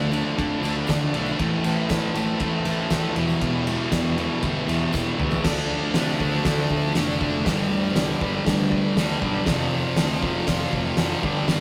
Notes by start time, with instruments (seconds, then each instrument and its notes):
Already playing: picked electric bass D2, distorted electric guitar D3 A3 D4, transistor combo organ F4 A4 D5
0.12 distorted electric guitar D3 A3 D4, ride, tambourine
0.37 picked electric bass F2, distorted electric guitar D3 A3 D4, kick, ride
0.62 picked electric bass D2, distorted electric guitar D3 A3 D4, ride, tambourine
0.87 picked electric bass D2, distorted electric guitar D3 A3 D4, kick, snare, ride, tambourine
1.13 picked electric bass B1, distorted electric guitar D3 A3 D4, ride
1.26 tambourine
1.38 picked electric bass A1, distorted electric guitar A2 E3 A3, transistor combo organ E4 A4, kick, ride
1.43 transistor combo organ C5
1.64 distorted electric guitar A2 E3 A3, ride, tambourine
1.89 picked electric bass A1, distorted electric guitar A2 E3 A3, kick, snare, ride, tambourine
2.15 picked electric bass A1, distorted electric guitar A2 E3 A3, ride, tambourine
2.28 tambourine
2.40 picked electric bass A1, distorted electric guitar A2 E3 A3, kick, ride
2.64 picked electric bass A1, distorted electric guitar A2 E3 A3, ride, tambourine
2.90 picked electric bass A1, distorted electric guitar A2 E3 A3, kick, snare, ride, tambourine
3.14 picked electric bass E1, distorted electric guitar E2 B2 E3, transistor combo organ E4 G4 B4, ride
3.28 tambourine
3.41 picked electric bass E1, distorted electric guitar E2 B2 E3, kick, ride
3.67 distorted electric guitar E2 B2 E3, ride, tambourine
3.91 picked electric bass E1, distorted electric guitar E2 B2 E3, kick, snare, ride, tambourine
4.17 distorted electric guitar E2 B2 E3, ride, tambourine
4.42 picked electric bass G1, distorted electric guitar E2 B2 E3, kick, ride, tambourine
4.56 tambourine
4.67 picked electric bass E1, distorted electric guitar E2 B2 E3, ride, tambourine
4.93 picked electric bass E1, distorted electric guitar E2 B2 E3, kick, snare, tambourine
5.06 tambourine
5.18 picked electric bass D2, distorted electric guitar E2 B2 E3, mid tom, tambourine
5.31 floor tom, tambourine
5.42 picked electric bass D2, distorted electric guitar D3 A3, transistor combo organ F4 A4, kick, snare, crash
5.46 distorted electric guitar D4, transistor combo organ D5
5.93 picked electric bass C3, distorted electric guitar D3 A3 D4, snare, open hi-hat
6.18 picked electric bass D2, distorted electric guitar A3 D4, kick
6.43 picked electric bass D2, distorted electric guitar D3 A3 D4, kick, snare, open hi-hat
6.71 picked electric bass D2, kick
6.93 picked electric bass F1, distorted electric guitar D3 A3 D4, snare, open hi-hat
7.19 distorted electric guitar A3 D4, kick
7.43 picked electric bass G1, distorted electric guitar G2 D3, transistor combo organ G4 B4, kick, snare, open hi-hat
7.47 distorted electric guitar G3, transistor combo organ D5
7.70 picked electric bass D2
7.95 picked electric bass C2, distorted electric guitar G2 D3 G3, snare, open hi-hat
8.21 picked electric bass G1, distorted electric guitar D3 G3, kick
8.45 picked electric bass D2, distorted electric guitar G2 D3 G3, kick, snare, open hi-hat
8.72 kick
8.96 picked electric bass D2, distorted electric guitar G2 D3 G3, snare, open hi-hat
9.21 picked electric bass B1, distorted electric guitar D3 G3, kick
9.45 picked electric bass F1, distorted electric guitar F2 C3 F3, transistor combo organ F4 A4 C5, kick, snare, open hi-hat
9.96 picked electric bass D2, distorted electric guitar F2 C3 F3, snare, open hi-hat
10.22 picked electric bass F1, distorted electric guitar C3 F3, kick
10.47 picked electric bass F1, distorted electric guitar F2 C3 F3, kick, snare, open hi-hat
10.73 picked electric bass F1, kick
10.96 picked electric bass F1, distorted electric guitar F2 C3, snare, open hi-hat
11.01 distorted electric guitar F3
11.21 picked electric bass G1, distorted electric guitar D3 G3, transistor combo organ G4 B4 D5, kick
11.26 distorted electric guitar G2
11.47 picked electric bass G1, distorted electric guitar G2 D3 G3, snare, open hi-hat